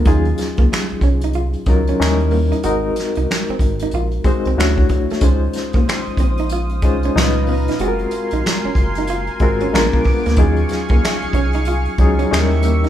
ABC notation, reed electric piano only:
X:1
M:4/4
L:1/8
Q:"Swing 16ths" 1/4=93
K:Ebdor
V:1 name="Reed electric piano"
[G,DEFA]3 z2 [G,DEFB] [_F,=G,DE_FB]2 | [A,CEGB]3 z2 [A,CEGc] [=A,=D=E^F^c]2 | [A,DEFc]3 z2 [A,DEFc] [B,,DEF_c]2 | [A,CFGAB]3 z2 [A,CFGB] [A,_C=DFB]2 |
[G,DEFA]3 z2 [G,DEFA] [=G,DE_FAB]2 |]